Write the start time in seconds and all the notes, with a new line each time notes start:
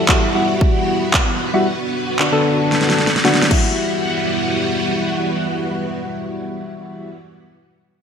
Already playing: E3 G3 B3 F#4
0.09 G3 E4 F#4, kick, clap
0.35 G3 E4 F#4
0.61 kick
1.14 kick, clap
1.53 G3 E4 F#4
1.67 D3 F#3
2.19 D3 B3 D4 F#4, clap
2.32 D3 B3 D4 A4
2.72 snare
2.81 snare
2.90 snare
2.98 snare
3.07 snare
3.16 snare
3.24 D3 B3 D4 F#4, snare
3.34 snare
3.42 snare
3.49 E3 G3 B3 E4 F#4, kick, crash